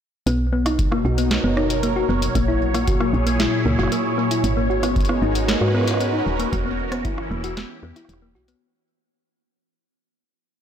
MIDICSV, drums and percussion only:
0, 0, Header, 1, 2, 480
1, 0, Start_track
1, 0, Key_signature, 5, "major"
1, 0, Tempo, 521739
1, 245, Time_signature, 4, 2, 24, 8
1, 9764, End_track
2, 0, Start_track
2, 0, Title_t, "Drums"
2, 246, Note_on_c, 9, 42, 54
2, 338, Note_off_c, 9, 42, 0
2, 606, Note_on_c, 9, 37, 76
2, 606, Note_on_c, 9, 42, 64
2, 698, Note_off_c, 9, 37, 0
2, 698, Note_off_c, 9, 42, 0
2, 725, Note_on_c, 9, 36, 119
2, 726, Note_on_c, 9, 42, 52
2, 817, Note_off_c, 9, 36, 0
2, 818, Note_off_c, 9, 42, 0
2, 846, Note_on_c, 9, 37, 82
2, 938, Note_off_c, 9, 37, 0
2, 1085, Note_on_c, 9, 42, 68
2, 1177, Note_off_c, 9, 42, 0
2, 1205, Note_on_c, 9, 38, 118
2, 1205, Note_on_c, 9, 42, 52
2, 1297, Note_off_c, 9, 38, 0
2, 1297, Note_off_c, 9, 42, 0
2, 1445, Note_on_c, 9, 37, 63
2, 1537, Note_off_c, 9, 37, 0
2, 1565, Note_on_c, 9, 42, 71
2, 1657, Note_off_c, 9, 42, 0
2, 1684, Note_on_c, 9, 42, 55
2, 1776, Note_off_c, 9, 42, 0
2, 2045, Note_on_c, 9, 42, 65
2, 2137, Note_off_c, 9, 42, 0
2, 2164, Note_on_c, 9, 36, 80
2, 2165, Note_on_c, 9, 42, 54
2, 2256, Note_off_c, 9, 36, 0
2, 2257, Note_off_c, 9, 42, 0
2, 2525, Note_on_c, 9, 37, 79
2, 2525, Note_on_c, 9, 42, 69
2, 2617, Note_off_c, 9, 37, 0
2, 2617, Note_off_c, 9, 42, 0
2, 2644, Note_on_c, 9, 36, 122
2, 2645, Note_on_c, 9, 42, 58
2, 2736, Note_off_c, 9, 36, 0
2, 2737, Note_off_c, 9, 42, 0
2, 2765, Note_on_c, 9, 37, 82
2, 2857, Note_off_c, 9, 37, 0
2, 3005, Note_on_c, 9, 42, 65
2, 3097, Note_off_c, 9, 42, 0
2, 3126, Note_on_c, 9, 38, 120
2, 3126, Note_on_c, 9, 42, 54
2, 3218, Note_off_c, 9, 38, 0
2, 3218, Note_off_c, 9, 42, 0
2, 3485, Note_on_c, 9, 37, 61
2, 3525, Note_off_c, 9, 37, 0
2, 3525, Note_on_c, 9, 37, 50
2, 3565, Note_off_c, 9, 37, 0
2, 3565, Note_on_c, 9, 37, 42
2, 3606, Note_on_c, 9, 42, 54
2, 3657, Note_off_c, 9, 37, 0
2, 3698, Note_off_c, 9, 42, 0
2, 3966, Note_on_c, 9, 42, 65
2, 4058, Note_off_c, 9, 42, 0
2, 4085, Note_on_c, 9, 42, 54
2, 4177, Note_off_c, 9, 42, 0
2, 4444, Note_on_c, 9, 37, 76
2, 4444, Note_on_c, 9, 42, 68
2, 4536, Note_off_c, 9, 37, 0
2, 4536, Note_off_c, 9, 42, 0
2, 4564, Note_on_c, 9, 36, 127
2, 4564, Note_on_c, 9, 42, 23
2, 4604, Note_off_c, 9, 42, 0
2, 4604, Note_on_c, 9, 42, 32
2, 4644, Note_off_c, 9, 42, 0
2, 4644, Note_on_c, 9, 42, 44
2, 4656, Note_off_c, 9, 36, 0
2, 4685, Note_on_c, 9, 37, 82
2, 4736, Note_off_c, 9, 42, 0
2, 4777, Note_off_c, 9, 37, 0
2, 4925, Note_on_c, 9, 42, 65
2, 5017, Note_off_c, 9, 42, 0
2, 5046, Note_on_c, 9, 38, 124
2, 5046, Note_on_c, 9, 42, 55
2, 5138, Note_off_c, 9, 38, 0
2, 5138, Note_off_c, 9, 42, 0
2, 5166, Note_on_c, 9, 37, 32
2, 5225, Note_off_c, 9, 37, 0
2, 5225, Note_on_c, 9, 37, 27
2, 5286, Note_off_c, 9, 37, 0
2, 5286, Note_on_c, 9, 37, 26
2, 5316, Note_off_c, 9, 37, 0
2, 5316, Note_on_c, 9, 37, 30
2, 5346, Note_off_c, 9, 37, 0
2, 5346, Note_on_c, 9, 37, 34
2, 5375, Note_off_c, 9, 37, 0
2, 5375, Note_on_c, 9, 37, 38
2, 5405, Note_off_c, 9, 37, 0
2, 5405, Note_on_c, 9, 37, 41
2, 5405, Note_on_c, 9, 42, 68
2, 5435, Note_off_c, 9, 37, 0
2, 5435, Note_on_c, 9, 37, 48
2, 5464, Note_off_c, 9, 37, 0
2, 5464, Note_on_c, 9, 37, 52
2, 5494, Note_off_c, 9, 37, 0
2, 5494, Note_on_c, 9, 37, 55
2, 5497, Note_off_c, 9, 42, 0
2, 5525, Note_on_c, 9, 42, 54
2, 5586, Note_off_c, 9, 37, 0
2, 5617, Note_off_c, 9, 42, 0
2, 5884, Note_on_c, 9, 42, 62
2, 5976, Note_off_c, 9, 42, 0
2, 6004, Note_on_c, 9, 36, 81
2, 6005, Note_on_c, 9, 42, 51
2, 6096, Note_off_c, 9, 36, 0
2, 6097, Note_off_c, 9, 42, 0
2, 6365, Note_on_c, 9, 37, 78
2, 6365, Note_on_c, 9, 42, 65
2, 6457, Note_off_c, 9, 37, 0
2, 6457, Note_off_c, 9, 42, 0
2, 6484, Note_on_c, 9, 36, 119
2, 6484, Note_on_c, 9, 42, 53
2, 6576, Note_off_c, 9, 36, 0
2, 6576, Note_off_c, 9, 42, 0
2, 6605, Note_on_c, 9, 37, 78
2, 6697, Note_off_c, 9, 37, 0
2, 6843, Note_on_c, 9, 42, 64
2, 6935, Note_off_c, 9, 42, 0
2, 6965, Note_on_c, 9, 38, 127
2, 6965, Note_on_c, 9, 42, 53
2, 7057, Note_off_c, 9, 38, 0
2, 7057, Note_off_c, 9, 42, 0
2, 7325, Note_on_c, 9, 37, 27
2, 7325, Note_on_c, 9, 42, 67
2, 7404, Note_off_c, 9, 37, 0
2, 7404, Note_on_c, 9, 37, 37
2, 7417, Note_off_c, 9, 42, 0
2, 7444, Note_on_c, 9, 42, 52
2, 7483, Note_off_c, 9, 37, 0
2, 7483, Note_on_c, 9, 37, 45
2, 7536, Note_off_c, 9, 42, 0
2, 7575, Note_off_c, 9, 37, 0
2, 7803, Note_on_c, 9, 42, 65
2, 7895, Note_off_c, 9, 42, 0
2, 9764, End_track
0, 0, End_of_file